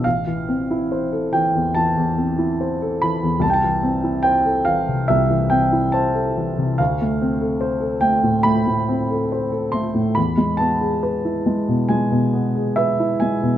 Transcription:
0.04 1.71 A1 soft
0.04 1.32 F5 medium
0.27 0.61 E3 soft
0.49 0.82 C4 soft
0.71 1.04 E4 soft
0.92 1.25 C5 soft
1.12 1.45 A4 soft
1.33 1.67 E3 soft
1.33 1.75 G5 medium
1.55 1.88 E2 soft
1.75 2.09 E3 soft
1.75 3.02 A5 medium
1.97 2.31 E2 soft
2.18 2.52 C4 soft
2.38 2.73 E4 soft
2.61 2.94 C5 soft
2.82 3.15 A4 soft
3.02 3.35 E3 soft
3.02 3.42 B5 medium
3.23 3.43 E2 soft
3.39 5.02 C2 soft
3.39 3.48 A5 medium
3.50 3.55 G5 medium
3.50 4.23 A5 medium
3.63 3.95 E3 soft
3.83 4.16 C4 soft
4.04 4.37 E4 soft
4.23 4.57 C5 soft
4.23 4.65 G5 medium
4.45 4.79 A4 soft
4.65 5.00 E3 soft
4.65 5.08 F5 medium
4.88 5.21 C3 soft
5.08 6.76 C2 soft
5.08 5.50 E5 medium
5.30 5.63 E3 soft
5.50 5.84 C4 soft
5.50 5.93 G5 medium
5.73 6.06 E4 soft
5.92 6.28 C5 soft
5.92 6.79 A5 medium
6.15 6.49 A4 soft
6.36 6.71 E3 soft
6.58 6.80 C3 soft
6.78 8.41 D2 soft
6.78 8.01 F5 medium
7.01 7.34 A3 soft
7.22 7.54 C4 soft
7.41 7.74 A4 soft
7.61 7.93 C5 soft
7.80 8.14 A4 soft
8.01 8.36 A3 soft
8.01 8.44 G5 medium
8.23 8.58 A2 soft
8.43 8.80 A3 soft
8.43 9.73 B5 medium
8.66 9.01 A2 soft
8.89 9.23 C4 soft
9.11 9.44 A4 soft
9.32 9.66 C5 soft
9.52 9.86 A4 soft
9.72 10.08 A3 soft
9.72 10.15 C6 medium
9.94 10.16 A2 soft
10.15 11.85 E2 soft
10.15 10.58 B5 medium
10.37 10.72 G#3 soft
10.57 10.93 B3 soft
10.57 11.88 A5 medium
10.81 11.15 G#4 soft
11.03 11.37 B4 soft
11.25 11.59 E4 soft
11.46 11.80 G#3 soft
11.68 12.03 B2 soft
11.89 12.24 G#3 soft
11.89 12.76 G#5 medium
12.11 12.46 B2 soft
12.33 12.68 B3 soft
12.55 12.90 G#4 soft
12.76 13.12 B4 soft
12.76 13.20 E5 medium
13.00 13.34 E4 soft
13.20 13.56 G#3 soft
13.20 13.58 G#5 medium
13.43 13.58 B2 soft

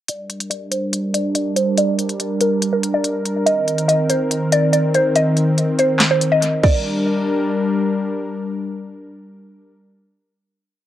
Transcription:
0.08 3.43 G3 medium
0.08 3.43 D4 medium
0.08 6.59 A#4 medium
0.08 0.49 D5 loud
0.08 closed hi-hat medium
0.30 closed hi-hat medium
0.40 closed hi-hat medium
0.50 0.70 D5 medium
0.50 closed hi-hat medium
0.71 1.11 C5 medium
0.71 closed hi-hat medium
0.93 closed hi-hat medium
1.14 1.34 D5 medium
1.14 closed hi-hat medium
1.35 1.55 D5 medium
1.35 closed hi-hat medium
1.56 1.76 C5 medium
1.56 closed hi-hat medium
1.77 2.17 D5 loud
1.77 closed hi-hat medium
1.99 closed hi-hat medium
2.09 closed hi-hat medium
2.20 closed hi-hat medium
2.41 2.71 A#4 medium
2.41 closed hi-hat medium
2.62 closed hi-hat medium
2.73 2.92 A#4 medium
2.83 closed hi-hat medium
2.94 3.44 D5 medium
3.04 closed hi-hat medium
3.25 closed hi-hat medium
3.46 6.60 D#3 medium
3.46 6.60 C4 medium
3.46 3.86 D#5 loud
3.46 closed hi-hat medium
3.68 closed hi-hat medium
3.78 closed hi-hat medium
3.88 4.08 D#5 medium
3.88 closed hi-hat medium
4.10 4.50 C5 medium
4.10 closed hi-hat medium
4.31 closed hi-hat medium
4.52 4.72 D5 medium
4.52 closed hi-hat medium
4.73 4.93 D5 medium
4.73 closed hi-hat medium
4.94 5.14 C5 medium
4.94 closed hi-hat medium
5.16 5.55 D#5 loud
5.16 closed hi-hat medium
5.37 closed hi-hat medium
5.58 closed hi-hat medium
5.79 6.09 C5 medium
5.79 closed hi-hat medium
6.00 snare loud
6.00 clap medium
6.00 closed hi-hat medium
6.11 6.30 C5 medium
6.21 closed hi-hat medium
6.32 6.62 D#5 medium
6.42 closed hi-hat medium
6.63 9.72 G3 medium
6.63 9.72 D4 medium
6.63 9.72 A#4 medium
6.63 8.07 D5 medium
6.63 kick loud
6.63 crash medium

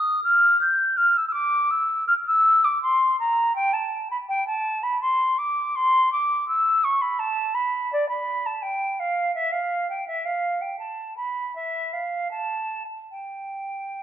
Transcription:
0.00 0.23 D#6 medium
0.23 0.60 F6 medium
0.61 0.98 G6 loud
0.97 1.18 F6 loud
1.17 1.27 E6 medium
1.27 1.33 E6 medium
1.33 1.72 D6 loud
1.70 2.06 E6 medium
2.07 2.13 F6 loud
2.27 2.66 E6 loud
2.64 2.82 D6 medium
2.82 3.19 C6 loud
3.19 3.55 A#5 medium
3.55 3.74 G5 loud
3.73 4.10 A5 medium
4.11 4.17 B5 medium
4.28 4.46 G5 loud
4.47 4.84 A5 loud
4.83 5.01 B5 medium
5.01 5.39 C6 medium
5.38 5.77 D6 medium
5.75 6.12 C6 loud
6.12 6.47 D6 medium
6.48 6.85 E6 loud
6.84 7.03 C#6 loud
7.01 7.20 B5 medium
7.19 7.56 A5 loud
7.54 7.91 B5 medium
7.92 8.08 D5 medium
8.08 8.47 B5 medium
8.46 8.63 A5 medium
8.62 9.01 G5 medium
8.99 9.34 F5 medium
9.34 9.53 E5 loud
9.52 9.89 F5 medium
9.89 10.07 G5 medium
10.07 10.27 E5 medium
10.25 10.62 F5 medium
10.61 10.78 G5 medium
10.79 11.16 A5 medium
11.17 11.54 B5 medium
11.55 11.94 E5 medium
11.93 12.30 F5 medium
12.31 12.83 A5 medium
13.11 14.03 G5 medium

